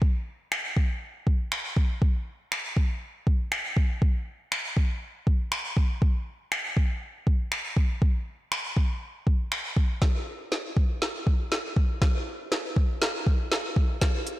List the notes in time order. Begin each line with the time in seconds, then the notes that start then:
0.02 kick
0.52 finger snap
0.77 kick
1.27 kick
1.52 finger snap
1.77 kick
2.02 kick
2.52 finger snap
2.77 kick
3.27 kick
3.52 finger snap
3.77 kick
4.02 kick
4.52 finger snap
4.77 kick
5.27 kick
5.52 finger snap
5.77 kick
6.02 kick
6.52 finger snap
6.77 kick
7.27 kick
7.52 finger snap
7.77 kick
8.02 kick
8.52 finger snap
8.77 kick
9.27 kick
9.52 finger snap
9.77 kick
10.02 kick, snare
10.52 snare
10.77 kick
11.02 snare
11.27 kick
11.52 snare
11.77 kick
12.02 kick, snare
12.52 snare
12.76 kick
13.02 snare
13.27 kick
13.52 snare
13.76 kick
14.02 kick, snare, closed hi-hat
14.27 closed hi-hat